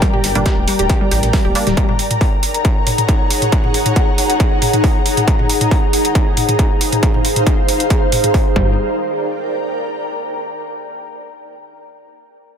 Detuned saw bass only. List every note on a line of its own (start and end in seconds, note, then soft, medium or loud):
0.24 0.33 G1 medium
0.35 0.44 G1 medium
0.57 0.65 D1 medium
0.79 0.87 D1 medium
1.11 1.21 A1 loud
1.23 1.31 A1 medium
1.45 1.53 D1 medium
1.67 1.75 D1 medium
8.56 8.76 G1 loud